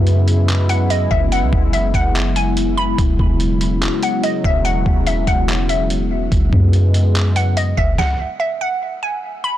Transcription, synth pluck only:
0.69 0.89 F#5 medium
0.90 1.10 D#5 medium
1.11 1.31 E5 medium
1.32 1.71 F#5 loud
1.73 1.93 E5 medium
1.95 2.34 F#5 medium
2.36 2.75 G#5 medium
2.77 2.97 B5 medium
4.03 4.23 F#5 medium
4.24 4.43 D#5 medium
4.45 4.64 E5 medium
4.65 5.04 F#5 loud
5.07 5.27 E5 medium
5.27 5.67 F#5 medium
5.69 5.89 E5 medium
7.36 7.56 F#5 medium
7.57 7.77 D#5 medium
7.77 7.97 E5 medium
7.99 8.38 F#5 medium
8.40 8.60 E5 medium
8.61 9.00 F#5 medium
9.03 9.42 G#5 medium
9.44 9.58 B5 medium

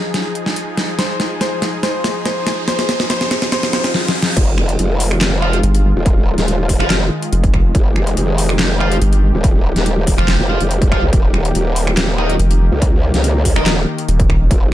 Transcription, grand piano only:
0.00 0.91 G#4 medium
0.99 1.32 C5 medium
1.41 1.74 C5 medium
1.83 2.17 C5 medium
2.25 2.59 C5 medium
2.68 3.01 C5 medium
3.10 3.43 C5 loud
3.52 3.72 C5 loud
3.73 3.93 C5 loud

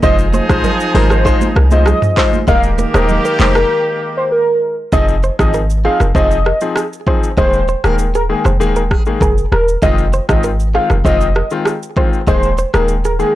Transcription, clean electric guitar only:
0.03 0.15 D#5 loud
0.34 0.45 C5 medium
0.65 0.76 A#4 medium
0.95 1.07 G#4 medium
1.11 1.22 A#4 medium
1.26 1.37 C5 medium
1.56 1.68 A#4 medium
1.87 1.99 G#4 medium
2.18 2.29 C5 medium
2.48 2.60 D#5 medium
2.79 2.90 A#4 medium
2.95 3.05 C5 medium
3.25 3.36 A#4 medium
3.56 3.67 G#4 medium
4.93 5.05 D#5 loud
5.24 5.35 C5 medium
5.54 5.66 A#4 medium
5.85 5.96 G#4 medium
6.01 6.11 A#4 medium
6.16 6.27 C5 medium
6.46 6.58 A#4 medium
6.77 6.88 G#4 medium
7.08 7.19 C5 medium
7.38 7.50 D#5 medium
7.69 7.85 C5 medium
7.85 7.95 A#4 medium
8.15 8.26 G#4 medium
8.46 8.56 C5 medium
8.77 8.91 A#4 medium
8.91 9.03 G#4 medium
9.22 9.44 A#4 medium
9.83 9.94 D#5 loud
10.14 10.25 C5 medium
10.44 10.56 A#4 medium
10.75 10.86 G#4 medium
10.91 11.01 A#4 medium
11.05 11.17 C5 medium
11.36 11.48 A#4 medium
11.67 11.78 G#4 medium
11.97 12.09 C5 medium
12.28 12.39 D#5 medium
12.59 12.70 C5 medium
12.75 12.85 A#4 medium
13.05 13.16 G#4 medium

